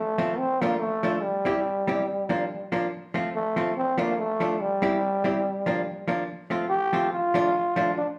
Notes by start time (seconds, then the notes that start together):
Already playing: A3
0.18 F3 A3 C4 F4
0.38 C4
0.61 F3 A3 A#3 D4 F4
0.79 A3
1.03 F3 A3 D4 F4
1.22 G3
1.45 G3 C4 E4 G4
1.87 G3 C4 E4 G4
2.29 F3 A#3 D4 F4
2.72 F3 A#3 D4 F4
3.14 F3 A3 C4 F4
3.36 A3
3.56 F3 A3 C4 F4
3.78 C4
3.98 F3 A3 A#3 D4 F4
4.18 A3
4.40 F3 A3 D4 F4
4.60 G3
4.82 G3 C4 E4 G4
5.24 G3 C4 E4 G4
5.66 F3 A#3 D4 F4
6.08 F3 A#3 D4 F4
6.50 F3 A3 C4 F4
6.70 G4
6.93 F3 A3 C4 F4
7.13 F4
7.34 F3 A3 D4 F4
7.76 F3 A3 D4 F4
7.98 D4